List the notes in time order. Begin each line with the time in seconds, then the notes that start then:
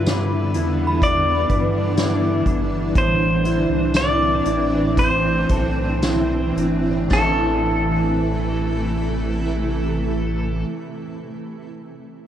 Already playing: G2 D3 E3 G3 B3 D4 E4 B4
0.06 D4, snare, closed hi-hat, tambourine
0.54 E2 E4, closed hi-hat
0.87 B5
1.01 D4 D5, kick, closed hi-hat
1.49 G2 B4, kick, closed hi-hat
1.98 E4, snare, closed hi-hat, tambourine
2.46 G1 D4, kick, closed hi-hat
2.95 A1 A2 C4 C5, kick, closed hi-hat
3.45 E4, closed hi-hat
3.70 C2
3.94 C4 D5, snare, closed hi-hat, tambourine
4.13 D6
4.45 A1 E4, closed hi-hat
4.97 C4 C5, kick, closed hi-hat
5.04 G6
5.49 B1 A4, kick, closed hi-hat
6.02 E4, snare, closed hi-hat, tambourine
6.56 G1 C4, closed hi-hat
7.08 A1 A2 C3 E3 A3 E4 A4 A6, kick, snare, splash
7.12 A3 C4 E4 A4
7.17 A4